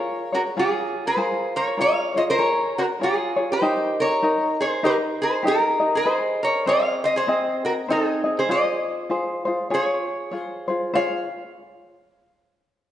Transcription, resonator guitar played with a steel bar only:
0.00 0.34 A#4 medium
0.00 0.89 C#5 medium
0.34 0.41 F#4 medium
0.34 0.41 A#4 medium
0.59 1.03 F4 medium
0.59 1.06 G#4 medium
1.07 1.51 G#4 medium
1.07 1.56 C5 loud
1.56 1.78 A#4 medium
1.56 1.79 C#5 medium
1.81 2.13 C#5 medium
1.81 2.13 F5 loud
2.17 2.22 C5 medium
2.17 2.23 D#5 medium
2.30 2.73 A#4 medium
2.30 2.78 C#5 loud
2.78 2.85 F#4 medium
2.78 2.85 A#4 medium
3.03 3.47 F4 medium
3.03 3.51 G#4 medium
3.52 3.95 G4 medium
3.52 4.01 C5 loud
4.00 4.55 A#4 medium
4.00 4.56 C#5 medium
4.60 4.82 G#4 medium
4.60 4.85 C5 medium
4.85 4.94 G4 medium
4.85 4.96 A#4 medium
5.22 5.44 G#4 medium
5.22 5.47 C5 medium
5.47 5.91 G4 medium
5.47 5.96 A#4 medium
5.95 6.39 G#4 medium
5.95 6.40 C5 medium
6.43 6.65 A#4 medium
6.43 6.67 C#5 medium
6.67 7.00 C5 medium
6.67 7.04 F5 medium
7.04 7.15 C5 medium
7.04 7.16 D#5 medium
7.16 7.61 G#4 medium
7.16 7.65 C5 loud
7.65 7.71 F#4 medium
7.65 7.72 A#4 medium
7.90 8.34 D#4 medium
7.90 8.38 G#4 medium
8.39 8.49 G#4 medium
8.39 8.50 C5 medium
8.51 9.68 C5 medium
8.51 9.68 D#5 medium
9.74 10.66 G#4 medium
9.74 10.37 C#5 medium
10.37 10.66 C5 medium
10.95 11.28 F5 medium

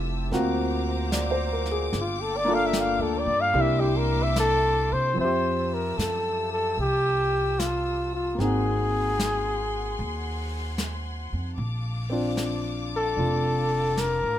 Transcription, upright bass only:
0.00 0.29 F1 medium
0.31 1.88 D2 medium
1.93 2.96 G1 medium
2.99 3.25 D2 medium
3.26 3.52 G2 medium
3.54 4.88 C2 medium
4.92 5.16 C3 medium
5.17 5.94 F2 medium
5.98 6.75 F#2 medium
6.78 8.34 C2 medium
8.39 9.94 G#1 medium
9.99 11.28 D#2 medium
11.33 11.56 F2 medium
11.58 13.13 A#1 medium
13.17 14.20 F1 medium
14.23 14.39 A1 medium

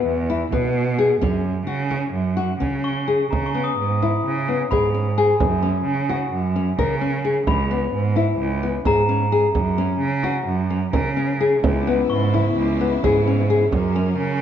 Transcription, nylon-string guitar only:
0.00 0.15 B3 medium
0.30 0.45 E4 medium
0.52 0.84 B3 medium
0.99 1.14 G#4 medium
1.21 1.53 C#4 medium
1.67 1.83 F#4 medium
1.90 2.22 C#4 medium
2.37 2.53 F#4 medium
2.60 2.92 C#4 medium
3.08 3.24 G#4 medium
3.54 3.86 B3 medium
4.02 4.34 E4 medium
4.48 4.64 B3 medium
4.71 4.87 G#4 medium
4.94 5.10 C#4 medium
5.18 5.33 G#4 medium
5.63 5.94 C#4 medium
6.09 6.41 F#4 medium
6.56 6.71 C#4 medium
6.79 6.94 A#4 medium
7.01 7.17 C#4 medium
7.25 7.40 G#4 medium
7.71 8.02 B3 medium
8.16 8.47 E4 medium
8.63 8.78 B3 medium
8.86 9.01 G#4 medium
9.09 9.24 C#4 medium
9.32 9.47 G#4 medium
9.78 10.09 C#4 medium
10.24 10.55 F#4 medium
10.70 10.86 C#4 medium
10.93 11.09 A#4 medium
11.17 11.33 C#4 medium
11.40 11.56 G#4 medium
11.87 12.19 B3 medium
12.34 12.65 E4 medium
12.81 12.96 B3 medium
13.04 13.19 G#4 medium
13.27 13.43 C#4 medium
13.50 13.65 G#4 medium
13.96 14.26 C#4 medium

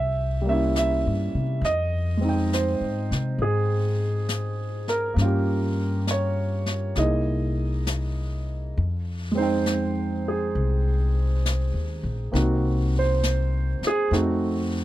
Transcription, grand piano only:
0.00 0.48 E5 medium
0.42 1.62 G3 soft
0.42 1.64 A#3 soft
0.49 1.65 C#4 soft
0.49 1.67 E4 soft
0.49 0.76 E5 medium
0.78 1.68 E5 medium
1.65 2.56 D#5 medium
2.17 5.15 G#3 soft
2.17 5.17 C4 soft
2.24 5.19 D#4 soft
2.29 5.21 G5 soft
2.54 3.38 C5 medium
3.42 4.84 G#4 medium
4.89 6.11 A#4 medium
5.14 6.94 A#3 soft
5.18 6.96 C#4 soft
5.18 6.98 F4 soft
5.24 7.00 G4 soft
6.11 6.94 C#5 medium
6.96 8.78 A#3 soft
6.96 8.78 D#4 soft
6.96 8.78 E4 soft
6.96 8.78 G#4 soft
6.96 8.45 D#5 medium
9.31 12.31 G#3 soft
9.31 12.31 C4 soft
9.37 12.33 D#4 soft
9.37 10.23 C5 medium
9.42 12.37 G5 soft
10.28 10.57 G#4 medium
12.32 14.10 A#3 soft
12.32 14.11 C4 soft
12.32 14.11 D#4 soft
12.36 14.12 F#4 soft
12.99 13.81 C5 medium
13.87 14.03 G#4 medium
14.12 14.84 A3 soft
14.12 14.84 C4 soft
14.12 14.84 D#4 soft
14.12 14.84 F#4 soft

